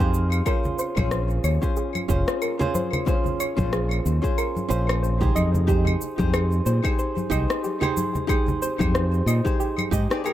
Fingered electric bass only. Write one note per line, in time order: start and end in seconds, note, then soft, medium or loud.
0.00 0.40 F2 loud
0.98 1.38 A#1 medium
1.44 1.57 D#2 medium
2.09 2.23 F1 medium
3.59 3.99 A#1 medium
4.06 4.19 D#2 medium
4.71 5.29 A#1 medium
5.36 5.95 F2 loud
6.20 6.60 F2 medium
6.66 6.79 A#2 medium
7.31 7.45 C2 medium
8.81 9.21 F2 medium
9.26 9.40 A#2 medium
9.92 10.06 G#2 loud